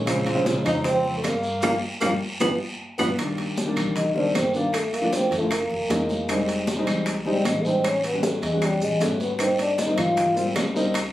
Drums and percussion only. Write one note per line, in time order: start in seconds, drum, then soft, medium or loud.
0.07 high bongo medium
0.07 high conga soft
0.07 high timbale loud
0.07 long guiro medium
0.07 claves medium
0.07 maracas medium
0.27 high bongo soft
0.27 high conga soft
0.27 high timbale medium
0.46 high bongo medium
0.46 high conga medium
0.46 low timbale medium
0.46 short guiro medium
0.46 maracas medium
0.65 high bongo soft
0.65 high conga soft
0.65 low conga medium
0.65 high timbale medium
0.65 short guiro medium
0.65 claves medium
0.65 maracas soft
0.84 high bongo medium
0.84 high conga soft
0.84 low conga medium
0.84 high timbale medium
0.84 long guiro medium
0.84 maracas medium
1.04 high bongo soft
1.04 high conga soft
1.24 high bongo soft
1.24 low bongo medium
1.24 high conga medium
1.24 high timbale medium
1.24 low timbale medium
1.24 short guiro medium
1.24 claves medium
1.24 maracas medium
1.43 high conga soft
1.43 short guiro medium
1.43 maracas soft
1.62 high bongo loud
1.62 high conga loud
1.62 high timbale loud
1.62 long guiro loud
1.62 claves loud
1.62 maracas loud
2.01 high bongo medium
2.01 high conga loud
2.01 high timbale loud
2.01 long guiro loud
2.01 claves loud
2.01 maracas loud
2.40 high bongo medium
2.40 high conga loud
2.40 high timbale loud
2.40 long guiro loud
2.40 claves medium
2.40 maracas medium
2.98 high bongo medium
2.98 high conga loud
2.98 high timbale medium
2.98 long guiro loud
2.98 claves loud
2.98 maracas medium
3.17 high bongo medium
3.17 high conga soft
3.17 high timbale loud
3.17 long guiro medium
3.17 claves medium
3.17 maracas medium
3.38 high bongo soft
3.38 high conga soft
3.38 high timbale medium
3.56 high bongo medium
3.56 high conga medium
3.56 low timbale medium
3.56 short guiro medium
3.56 maracas medium
3.76 high bongo soft
3.76 high conga soft
3.76 low conga medium
3.76 high timbale medium
3.76 short guiro medium
3.76 claves medium
3.76 maracas soft
3.96 high bongo medium
3.96 high conga soft
3.96 low conga medium
3.96 high timbale medium
3.96 long guiro medium
3.96 maracas medium
4.16 high bongo soft
4.16 high conga soft
4.35 high bongo soft
4.35 low bongo medium
4.35 high conga medium
4.35 high timbale medium
4.35 low timbale medium
4.35 short guiro medium
4.35 claves medium
4.35 maracas medium
4.54 high conga soft
4.54 short guiro medium
4.54 maracas soft
4.73 high bongo medium
4.73 high conga soft
4.73 high timbale medium
4.73 long guiro medium
4.73 claves medium
4.73 maracas medium
4.93 high bongo soft
4.93 high conga soft
4.93 high timbale medium
4.93 maracas medium
5.12 high bongo medium
5.12 high conga medium
5.12 low timbale medium
5.12 short guiro medium
5.12 maracas medium
5.31 high bongo soft
5.31 high conga soft
5.31 high timbale medium
5.31 short guiro medium
5.31 maracas soft
5.51 high bongo medium
5.51 high conga soft
5.51 high timbale medium
5.51 long guiro medium
5.51 claves medium
5.51 maracas medium
5.70 high bongo soft
5.70 high conga soft
5.90 high bongo soft
5.90 low bongo medium
5.90 high conga medium
5.90 high timbale medium
5.90 low timbale medium
5.90 short guiro medium
5.90 maracas medium
6.09 high conga medium
6.09 short guiro medium
6.09 maracas soft
6.28 high bongo medium
6.28 high conga soft
6.28 high timbale medium
6.28 long guiro medium
6.28 claves medium
6.28 maracas medium
6.48 high bongo soft
6.48 high conga soft
6.48 high timbale medium
6.48 maracas medium
6.67 high bongo medium
6.67 high conga medium
6.67 low timbale medium
6.67 short guiro medium
6.67 maracas medium
6.87 high bongo soft
6.87 high conga soft
6.87 low conga medium
6.87 high timbale medium
6.87 short guiro medium
6.87 claves medium
6.87 maracas soft
7.06 high bongo medium
7.06 high conga soft
7.06 high timbale medium
7.06 long guiro medium
7.06 maracas medium
7.26 high bongo soft
7.26 high conga soft
7.45 high bongo soft
7.45 low bongo medium
7.45 high conga medium
7.45 high timbale medium
7.45 low timbale medium
7.45 short guiro medium
7.45 claves medium
7.45 maracas medium
7.64 high conga soft
7.64 short guiro medium
7.64 maracas soft
7.84 high bongo medium
7.84 high conga soft
7.84 high timbale medium
7.84 long guiro medium
7.84 claves medium
7.84 maracas medium
8.04 high bongo soft
8.04 high conga soft
8.04 high timbale medium
8.04 maracas medium
8.23 high bongo medium
8.23 high conga loud
8.23 low timbale medium
8.23 short guiro medium
8.23 maracas medium
8.42 high bongo soft
8.42 high conga soft
8.42 high timbale medium
8.42 short guiro medium
8.42 maracas soft
8.62 high bongo medium
8.62 high conga soft
8.62 high timbale medium
8.62 long guiro medium
8.62 claves medium
8.62 maracas medium
8.81 high bongo soft
8.81 high conga soft
8.81 maracas medium
9.01 high bongo soft
9.01 low bongo medium
9.01 high conga medium
9.01 high timbale medium
9.01 low timbale medium
9.01 short guiro medium
9.01 maracas medium
9.20 high conga medium
9.20 short guiro medium
9.20 maracas soft
9.39 high bongo medium
9.39 high conga soft
9.39 high timbale loud
9.39 long guiro medium
9.39 claves medium
9.39 maracas medium
9.59 high bongo soft
9.59 high conga soft
9.59 high timbale medium
9.59 maracas medium
9.78 high bongo medium
9.78 high conga medium
9.78 low timbale medium
9.78 short guiro medium
9.78 maracas medium
9.97 high bongo soft
9.97 high conga soft
9.97 low conga medium
9.97 high timbale medium
9.97 short guiro medium
9.97 claves medium
9.97 maracas soft
10.17 high bongo medium
10.17 high conga soft
10.17 low conga medium
10.17 high timbale medium
10.17 long guiro medium
10.17 maracas medium
10.37 high bongo soft
10.37 high conga soft
10.37 maracas medium
10.56 high bongo soft
10.56 low bongo medium
10.56 high conga medium
10.56 high timbale loud
10.56 low timbale medium
10.56 short guiro medium
10.56 claves medium
10.56 maracas medium
10.76 high conga soft
10.76 short guiro medium
10.76 maracas soft
10.94 high bongo medium
10.94 high conga soft
10.94 high timbale loud
10.94 long guiro medium
10.94 claves medium
10.94 maracas medium